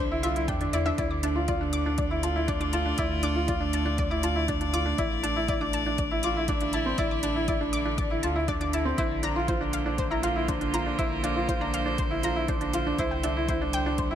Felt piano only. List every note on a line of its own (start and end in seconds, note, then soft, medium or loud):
0.12 0.22 E4 medium
0.24 0.34 F4 medium
0.36 0.46 E4 medium
0.49 0.59 D4 medium
0.61 0.72 D4 medium
0.74 0.84 E4 medium
0.86 0.96 D4 medium
0.98 1.20 E4 medium
1.23 1.34 D4 medium
1.36 1.46 F4 medium
1.48 1.59 F4 medium
1.61 1.82 D4 medium
1.86 2.07 D4 medium
2.11 2.21 E4 medium
2.23 2.34 F4 medium
2.36 2.46 E4 medium
2.48 2.59 D4 medium
2.60 2.71 D4 medium
2.73 2.84 F4 medium
2.86 2.96 D4 medium
2.98 3.19 E4 loud
3.23 3.34 D4 medium
3.35 3.46 F4 medium
3.48 3.59 F4 medium
3.60 3.82 D4 medium
3.86 4.07 D4 medium
4.10 4.21 E4 medium
4.23 4.34 F4 medium
4.36 4.46 E4 medium
4.48 4.59 D4 medium
4.61 4.71 D4 medium
4.73 4.84 F4 medium
4.86 4.96 D4 medium
4.99 5.20 E4 loud
5.23 5.34 D4 medium
5.36 5.47 E4 medium
5.49 5.59 E4 medium
5.61 5.82 D4 medium
5.86 6.07 D4 medium
6.11 6.22 E4 medium
6.24 6.34 F4 medium
6.37 6.47 E4 medium
6.49 6.59 D4 medium
6.61 6.72 D4 medium
6.74 6.84 E4 medium
6.86 6.96 C4 medium
6.98 7.20 E4 loud
7.23 7.34 D4 medium
7.36 7.46 E4 medium
7.48 7.59 E4 medium
7.61 7.82 D4 medium
7.85 8.07 D4 medium
8.11 8.21 E4 medium
8.24 8.34 F4 medium
8.36 8.46 E4 medium
8.48 8.59 D4 medium
8.61 8.71 D4 medium
8.73 8.84 E4 medium
8.85 8.96 C4 medium
8.98 9.19 E4 loud
9.23 9.34 D4 medium
9.36 9.46 F4 medium
9.48 9.59 F4 medium
9.61 9.82 D4 medium
9.86 10.07 D4 medium
10.11 10.21 E4 medium
10.23 10.34 F4 medium
10.36 10.46 E4 medium
10.48 10.59 D4 medium
10.61 10.71 D4 medium
10.74 10.84 F4 medium
10.86 10.97 D4 medium
10.98 11.20 E4 loud
11.24 11.34 D4 medium
11.36 11.46 F4 medium
11.48 11.59 F4 medium
11.61 11.82 D4 medium
11.86 12.07 D4 medium
12.11 12.21 E4 medium
12.24 12.34 F4 medium
12.36 12.46 E4 medium
12.48 12.59 D4 medium
12.61 12.71 D4 medium
12.74 12.84 F4 medium
12.87 12.97 D4 medium
12.99 13.20 E4 loud
13.24 13.34 D4 medium
13.36 13.47 E4 medium
13.49 13.59 E4 medium
13.62 13.82 D4 medium
13.86 14.07 D4 medium
14.11 14.15 E4 medium